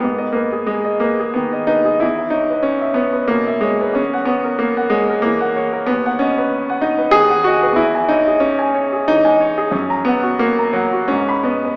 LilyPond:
<<
  \new Staff \with { instrumentName = "Grand piano" } { \time 3/4 \key cis \dorian \tempo 4 = 93 gis,16 dis''16 b'16 gis'8 dis''16 b'16 gis'16 dis16 dis''16 b'16 gis'16 | e,16 e''16 cis''16 b'8 e''16 cis''16 b'16 b,16 e''16 cis''16 b'16 | e,16 fis''16 cis''16 ais'8 fis''16 cis''16 ais'16 e16 fis''16 cis''16 ais'16 | dis,16 fis''16 dis''16 b'8 fis''16 dis''16 b'16 dis16 fis''16 dis''16 b'16 |
e,16 gis''16 cis''16 gis'8 gis''16 cis''16 gis'16 e16 gis''16 cis''16 gis'16 | fis,16 ais''16 fis''16 fis'8 ais''16 fis''16 fis'16 gis,16 b''16 dis''16 b'16 | }
  \new Staff \with { instrumentName = "Grand piano" } { \time 3/4 \key cis \dorian b8 ais8 gis8 ais8 b8 dis'8 | e'8 dis'8 cis'8 b8 ais8 gis8 | cis'8 b8 ais8 gis8 ais8 r8 | b8 cis'4 dis'8 gis'8 fis'8 |
e'8 dis'8 cis'4 dis'4 | cis'8 b8 ais8 fis8 cis'8 b8 | }
>>